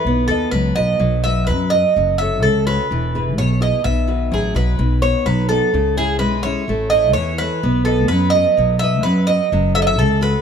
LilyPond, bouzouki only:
\new Staff \with { instrumentName = "Bouzouki" } { \time 2/4 \key b \mixolydian \tempo 4 = 127 b'8 a'8 b'8 dis''8~ | dis''8 e''8 b'8 dis''8~ | dis''8 e''8 a'8 b'8~ | b'4 cis''8 dis''8 |
e''4 gis'8 b'8~ | b'8 cis''8 b'8 a'8~ | a'8 gis'8 b'8 cis''8~ | cis''8 dis''8 cis''8 b'8~ |
b'8 a'8 b'8 dis''8~ | dis''8 e''8 b'8 dis''8~ | dis''8 e''32 dis''32 e''16 a'8 b'8 | }